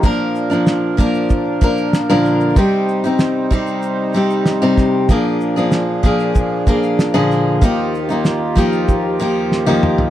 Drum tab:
SH |x-xxx-xxx-xxx-xx|x-xxx-xxx-xxx-x-|x-xxx-xxx-xxx-x-|x-xxx-xxx-x-----|
SD |----o-------o---|----o-------o-o-|----o-------o-o-|----o-------o---|
T1 |----------------|----------------|----------------|-------------o--|
T2 |----------------|----------------|----------------|--------------o-|
FT |----------------|----------------|----------------|---------------o|
BD |o-----o-o-o-----|o-----o-------o-|o-----o-o-o-----|o-----o-o-------|